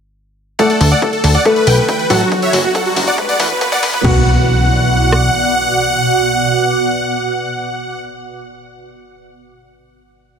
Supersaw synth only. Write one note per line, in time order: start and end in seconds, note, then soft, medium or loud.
0.59 0.66 D5 medium
0.59 0.66 F#5 loud
0.70 0.77 A4 medium
0.81 0.88 A4 medium
0.91 0.99 D5 medium
0.91 0.99 F#5 medium
1.02 1.09 A4 medium
1.13 1.20 A4 medium
1.24 1.31 A4 medium
1.35 1.42 D5 medium
1.35 1.42 F#5 medium
1.46 1.53 B4 medium
1.56 1.63 B4 medium
1.67 1.74 B4 medium
1.67 1.74 G5 medium
1.78 1.85 B4 medium
1.88 1.96 B4 medium
1.88 1.96 G5 medium
1.99 2.06 B4 medium
2.10 2.17 A4 medium
2.10 2.17 F#5 medium
2.21 2.28 F#4 medium
2.32 2.39 F#4 medium
2.43 2.50 C#5 medium
2.43 2.50 E5 medium
2.54 2.61 F#4 medium
2.64 2.71 F#4 medium
2.75 2.82 A4 medium
2.75 2.82 F#5 medium
2.86 2.93 F#4 medium
2.97 3.04 F#4 medium
3.07 3.14 D5 medium
3.07 3.14 F#5 medium
3.18 3.25 B4 medium
3.29 3.36 D5 medium
3.29 3.36 F#5 loud
3.40 3.47 B4 medium
3.50 3.58 B4 medium
3.61 3.68 B4 medium
3.72 3.79 D5 medium
3.72 3.79 F#5 loud
3.83 3.90 B4 medium
3.93 4.01 B4 medium
4.04 7.99 F#5 loud